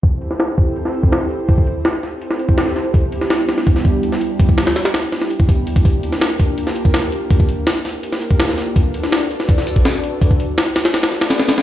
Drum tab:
HH |o-o-o-o-o-o-o-o-|o-o-o-o-o-o-o-o-|o-o-o-o-o-o-o-o-|o-ooooo-o-o-o-oo|
SD |---oo----o--o---|----o-o--o--ooo-|---oo-oo-o---o--|--ooooo-oo------|
BD |o-----o----o----|oo---------o----|o-------o-o-----|oo---------oo--o|

HH |o-o-o-o-o-o-o-o-|o-o-o-o-o-o-o-o-|o-o-o-o-o-o-o-o-|o-o-o-oooooooooo|
SD |---oo----o--o---|----o-o--o--ooo-|---oo--o-o--o---|----o-oooooooooo|
BD |o-----o----o----|oo---------o----|o-------o--o----|oo--------------|